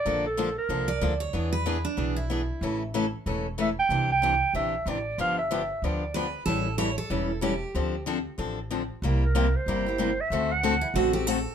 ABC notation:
X:1
M:4/4
L:1/8
Q:"Swing" 1/4=187
K:Dm
V:1 name="Clarinet"
d A2 B4 z | z8 | z6 e g- | g g3 e2 d2 |
f e3 d3 z | z8 | z8 | z B2 c4 e- |
e ^f3 z4 |]
V:2 name="Steel-string acoustic guitar"
z4 z d2 ^c- | ^c =B2 D2 E3- | E z6 z | z8 |
z6 =B2 | A2 ^c A3 G2- | G2 z6 | z8 |
z3 E ^F G A2 |]
V:3 name="Steel-string acoustic guitar"
[D,F,B,DA] z [D,F,B,DA] z [D,F,B,DA] z [D,F,B,DA] z | [E,=B,D^G] z [E,B,DG] z [E,B,DG] z [E,B,DG] z | [^C,E,A,^CA] z [C,E,A,CA] z [C,E,A,CA] z [C,E,A,CA] z | [C,E,DG] z [C,E,DG] z [C,E,DG] z [C,E,DG] z |
[D,F,=B,DG] z [D,F,B,DG] z [D,F,B,DG] z [D,F,B,DG] z | [E,G,^CEA] z [E,G,CEA] z [E,G,CEA] z [E,G,CEA] z | [D,F,CDA] z [D,F,CDA] z [D,F,CDA] z [D,F,CDA] z | [C,G,B,EG] z [C,G,B,EG] z [C,G,B,EG] [B,EG] [C,G,B,EG] z |
[D,A,C^FA] z [D,A,CFA] z [D,A,CFA] [CFA] [D,A,CFA] z |]
V:4 name="Upright bass" clef=bass
B,,,4 C,,2 D,,2 | E,,4 =B,,,4 | A,,,4 E,,,4 | C,,4 B,,,2 A,,,2 |
G,,,4 D,,4 | A,,,4 E,,,4 | D,,4 A,,,4 | C,,4 G,,,4 |
D,,4 A,,,4 |]